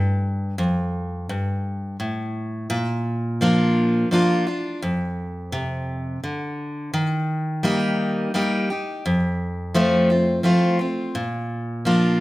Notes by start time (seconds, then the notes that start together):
Already playing: G2
0.58 F2
1.29 G2
2.00 A2
2.70 A#2
3.41 F3 A#3 D4 F4
4.11 F3 A#3 D4 F4
4.47 D4 F4
4.82 F2
5.52 C3
6.24 D3
6.94 D#3
7.63 G3 A#3 D#4 G4
8.34 G3 A#3 D#4 G4
8.70 D#4 G4
9.06 F2
9.74 F3 A3 C4 F4
10.10 C4 F4
10.43 F3 A3 C4 F4
10.79 C4 F4
11.15 A#2
11.85 F3 A#3 D4 F4